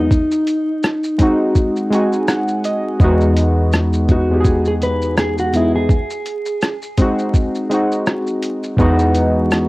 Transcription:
Already playing: synth keys E2 F#3 G#3 B3 D#4 F#4
0.00 clean electric guitar D#4
0.11 kick, shaker
0.31 shaker
0.47 closed hi-hat, shaker
0.83 cross-stick, shaker
1.03 shaker
1.18 synth keys G#3 C4 D#4, kick, closed hi-hat, shaker
1.23 synth keys F#4
1.55 kick, shaker
1.76 shaker
1.91 synth keys G#3 C4 D#4 G#5, closed hi-hat, shaker
1.95 synth keys F#4
2.13 shaker
2.28 synth keys F#5, cross-stick, shaker
2.48 shaker
2.64 synth keys D#5, closed hi-hat, shaker
2.99 synth keys E2 G#3 B3 D#4, kick, shaker
3.04 synth keys F#4
3.21 shaker
3.36 closed hi-hat, shaker
3.72 cross-stick, shaker
3.93 shaker
4.08 synth keys E2 G#3 B3 D#4 F#4, clean electric guitar F#4, kick, closed hi-hat, shaker
4.29 synth keys E2 G#3 B3 D#4
4.34 synth keys G4
4.40 synth keys G#4
4.44 kick, shaker
4.65 clean electric guitar G#4, shaker
4.82 clean electric guitar B4, closed hi-hat, shaker
5.02 shaker
5.17 clean electric guitar G#4, cross-stick, shaker
5.38 clean electric guitar F#4, shaker
5.53 synth keys E2 G#3 B3 D#4, clean electric guitar E4, closed hi-hat, shaker
5.57 synth keys G#4
5.76 clean electric guitar G#4
5.89 kick, shaker
6.10 shaker
6.26 closed hi-hat, shaker
6.46 shaker
6.62 cross-stick, shaker
6.82 shaker
6.98 synth keys G#3 C4 D#4 F#4, kick, closed hi-hat, shaker
7.19 shaker
7.34 kick, shaker
7.55 shaker
7.70 synth keys G#3 C4 D#4, closed hi-hat, shaker
7.74 synth keys F#4
7.92 shaker
8.07 cross-stick, shaker
8.27 shaker
8.43 closed hi-hat, shaker
8.63 shaker
8.77 synth keys E2 G#3 B3 D#4, kick, shaker
8.81 synth keys F#4
8.99 shaker
9.15 closed hi-hat, shaker
9.51 cross-stick, shaker

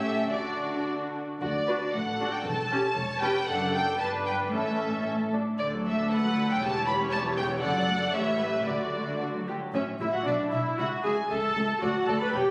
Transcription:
Already playing: double bass section A1, cello section A2, violin section C#4 G4 E5
0.04 viola section A4
0.29 double bass section D2, cello section D3, violin section D4 F#4 D5, viola section F#4
1.41 double bass section D2, cello section D3, violin section F#4 D5
1.67 viola section D4 F#4, violin section B4
1.93 double bass section A1, cello section A2, violin section A4 F#5
2.20 viola section D4 F#4
2.33 violin section G5
2.45 double bass section E1, cello section E2, violin section A5
2.72 viola section C#4 G4
2.96 double bass section E1, cello section E2, violin section C#5
3.21 viola section C#4 G4, violin section B4 G5
3.47 double bass section F#1, cello section F#2, viola section D4 A4, violin section A4 F#5
3.73 violin section G5
3.98 double bass section G1, cello section G2, viola section D4 B4, violin section B4 A5
4.26 violin section G5
4.50 double bass section A1, cello section A2, viola section C#4 A4, violin section A4 E5
5.05 viola section C#4
5.33 viola section D4
5.59 cello section D2, double bass section D2, viola section D3 A4, violin section D5
5.74 viola section F#3
5.86 viola section A3, violin section E5
6.00 viola section D4
6.11 viola section A3, violin section B4 F#5
6.24 viola section F#3
6.37 viola section D3
6.49 viola section F#3, violin section G5
6.61 double bass section E1, cello section E2, viola section C#3 G4, violin section C#5 A5
6.74 viola section E3
6.86 viola section G3, violin section B5
6.99 viola section C#4
7.11 viola section G3, violin section A5
7.23 viola section E3
7.36 viola section C#3, violin section G5
7.49 viola section E3
7.60 double bass section F#1, cello section F#2, viola section D3 A4, violin section D5 F#5
7.73 viola section F#3
7.87 viola section A3
8.00 viola section D4
8.13 double bass section A1, cello section A2, viola section E3 G4, violin section C#5 E5
8.26 viola section G3
8.38 viola section A3, violin section B4
8.52 viola section C#4
8.65 double bass section D2, cello section D3, viola section D3 F#4, violin section F#4 D5
8.80 viola section F#3
8.95 viola section A3
9.08 viola section D4
9.21 viola section A3, violin section F#4
9.34 viola section F#3
9.48 viola section D3, violin section G4
9.61 viola section F#3
9.73 double bass section A1, cello section A2, viola section C#4, violin section C#5 E5
9.99 double bass section A1, cello section A2, viola section E4, violin section E5
10.14 viola section F#4, violin section F#5
10.25 double bass section B1, cello section B2, viola section D4, violin section D5 E5
10.51 double bass section B1, cello section B2, viola section E4, violin section E5
10.77 double bass section C#2, cello section C#2, viola section F#4, violin section E5 F#5
11.03 double bass section C#2, cello section C#2, viola section G#4, violin section E5 G#5
11.29 double bass section C#2, cello section C#2, viola section A4, violin section E5 A5
11.56 cello section C#2, double bass section C#2, violin section E5
11.81 double bass section D2, cello section D2, viola section F#4, violin section D5 F#5
12.06 double bass section D2, cello section D2, viola section A4, violin section D5 A5
12.20 viola section B4, violin section B5
12.33 double bass section E1, cello section E2, viola section G4, violin section C#5 G5

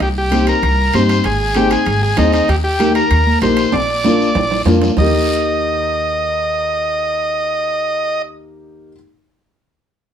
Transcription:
0.00 upright bass C2, transistor combo organ G4, high timbale, long guiro
0.18 transistor combo organ G4
0.31 upright piano C4 D#4 G4, high conga, high timbale, short guiro
0.46 transistor combo organ A#4, high timbale, short guiro
0.62 upright bass C2, high timbale, long guiro
0.93 upright bass G2, upright piano C4 D#4 G4, transistor combo organ C5, high conga, high timbale, short guiro
1.09 high timbale, short guiro
1.24 upright bass G#1, transistor combo organ G#4, high timbale, long guiro
1.55 upright piano C4 D#4 G#4, transistor combo organ G4, high conga, high timbale, short guiro
1.71 transistor combo organ G#4, high timbale, short guiro
1.86 upright bass G#1, high timbale, long guiro
2.03 transistor combo organ G#4
2.17 upright bass D#2, upright piano C4 D#4 G#4, transistor combo organ D#4, high conga, high timbale, low timbale, short guiro
2.32 transistor combo organ D#4, high timbale, short guiro
2.48 upright bass D#2, transistor combo organ G4, high timbale, long guiro
2.64 transistor combo organ G4
2.79 upright piano A#3 D#4 G4, high conga, high timbale, short guiro
2.95 transistor combo organ A#4, high timbale, short guiro
3.10 upright bass D#2, high timbale, long guiro
3.27 high conga
3.42 upright bass A#1, upright piano A#3 D#4 G4, transistor combo organ C5, high conga, high timbale, low timbale, short guiro
3.57 high timbale, short guiro
3.72 upright bass A#1, transistor combo organ D5, high timbale, long guiro
4.04 upright piano A#3 D4 F4, high conga, low timbale, short guiro
4.20 short guiro
4.35 upright bass A#1, low timbale, long guiro
4.51 low timbale
4.65 upright bass F2, upright piano A#3 D4 F4, high conga, low timbale, short guiro
4.82 low timbale, short guiro
4.97 upright bass D#2, upright piano A#3 D#4, transistor combo organ D#5, low conga, low timbale, long guiro
5.01 upright piano G4

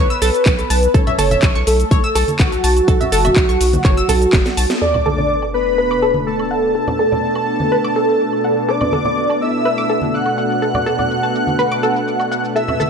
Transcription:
Already playing: analog synth lead B4
0.10 synth pluck E6, closed hi-hat
0.22 analog synth bass B1, synth pluck A4, open hi-hat, shaker
0.34 closed hi-hat, shaker
0.46 analog synth bass B1, kick, clap, closed hi-hat, shaker
0.58 closed hi-hat, high woodblock, shaker
0.70 analog synth bass B1, synth pluck A5, open hi-hat, shaker
0.83 closed hi-hat, shaker
0.94 analog synth bass B1, synth pluck A4, analog synth lead C#5, kick, closed hi-hat, shaker
1.07 synth pluck E5, closed hi-hat, low conga, high woodblock
1.18 analog synth bass F#1, synth pluck A4, open hi-hat, high conga, shaker
1.31 synth pluck E5, closed hi-hat, high conga, low conga, shaker
1.42 analog synth bass B1, kick, clap, closed hi-hat, shaker
1.55 analog synth bass B1, synth pluck C#6, closed hi-hat
1.67 analog synth bass B1, analog synth lead A4, open hi-hat, high woodblock, shaker
1.80 closed hi-hat, shaker
1.91 analog synth bass B1, synth pluck C#5, kick, closed hi-hat, shaker
2.04 synth pluck E6, closed hi-hat
2.15 analog synth bass B1, synth pluck A4, open hi-hat, high woodblock, shaker
2.28 closed hi-hat, high conga, shaker
2.39 analog synth bass B1, analog synth lead F#4, kick, clap, closed hi-hat, shaker
2.52 closed hi-hat, shaker
2.64 analog synth bass B1, synth pluck A5, open hi-hat, shaker
2.77 closed hi-hat, high woodblock, shaker
2.88 analog synth bass B1, synth pluck A4, kick, closed hi-hat, shaker
3.01 synth pluck E5, closed hi-hat, low conga, shaker
3.12 analog synth bass F#1, synth pluck A4, open hi-hat, shaker
3.25 synth pluck E5, closed hi-hat, high conga, low conga, high woodblock, shaker
3.36 analog synth bass B1, kick, clap, closed hi-hat, shaker
3.49 analog synth bass B1, synth pluck C#6, closed hi-hat, shaker
3.61 analog synth bass B1, open hi-hat, shaker
3.73 closed hi-hat, high conga, shaker
3.84 analog synth bass F#1, synth pluck C#5, kick, cross-stick, clap, closed hi-hat, high woodblock, shaker
3.97 synth pluck E6, closed hi-hat, shaker
4.09 analog synth bass B1, synth pluck A4, open hi-hat, low conga, shaker
4.22 closed hi-hat, shaker
4.33 analog synth bass F#1, kick, snare, clap, closed hi-hat, high woodblock, shaker
4.46 snare, closed hi-hat, shaker
4.57 analog synth bass B1, synth pluck A5, open hi-hat, shaker
4.70 snare, shaker
4.82 analog synth pad B2 A3 B3 D4 A4, synth pluck A4, analog synth lead D5, supersaw synth D6, sub drop, shaker
4.94 synth pluck D5, low conga, high woodblock
5.06 synth pluck A4, high conga
5.18 synth pluck D5, high conga, low conga
5.30 shaker
5.42 synth pluck A5, high woodblock
5.54 analog synth lead B4, supersaw synth B5
5.78 synth pluck B4
5.91 synth pluck D6, high woodblock
6.02 synth pluck A4
6.14 high conga
6.27 analog synth lead A4, supersaw synth A5
6.39 high woodblock
6.51 synth pluck F#5
6.75 synth pluck A4
6.88 synth pluck D5, low conga, high woodblock
6.99 synth pluck A4
7.12 synth pluck D5, low conga
7.35 synth pluck A5, high woodblock
7.48 shaker
7.60 high conga
7.72 synth pluck B4
7.84 synth pluck D6, high woodblock
7.96 synth pluck A4, shaker
8.33 high woodblock, shaker
8.44 synth pluck F#5, shaker
8.58 shaker
8.68 synth pluck A4, analog synth lead D5, supersaw synth D6, shaker
8.81 synth pluck D5, low conga, high woodblock
8.92 synth pluck A4, high conga, shaker
9.05 synth pluck D5, high conga, low conga, shaker
9.17 shaker
9.30 synth pluck A5, high woodblock
9.41 analog synth lead E5, supersaw synth E6, shaker
9.54 shaker
9.65 synth pluck B4, shaker
9.78 synth pluck D6, high woodblock
9.90 synth pluck A4, shaker
10.02 high conga, shaker
10.14 analog synth lead F#5, supersaw synth F#6, shaker
10.26 high woodblock, shaker
10.38 synth pluck F#5, shaker
10.51 shaker
10.62 synth pluck A4, shaker
10.75 synth pluck D5, low conga, high woodblock
10.86 synth pluck A4, shaker
10.99 synth pluck D5, low conga, shaker
11.11 shaker
11.23 synth pluck A5, high woodblock, shaker
11.35 shaker
11.47 high conga, shaker
11.59 synth pluck B4, shaker
11.72 synth pluck D6, high woodblock
11.83 synth pluck A4, shaker
11.96 shaker
12.08 shaker
12.20 high woodblock, shaker
12.32 synth pluck F#5, shaker
12.45 shaker
12.56 analog synth pad B3 E4, synth pluck A4, analog synth lead E5, supersaw synth E6, shaker
12.68 synth pluck E5, low conga, high woodblock
12.80 synth pluck A4, high conga, shaker

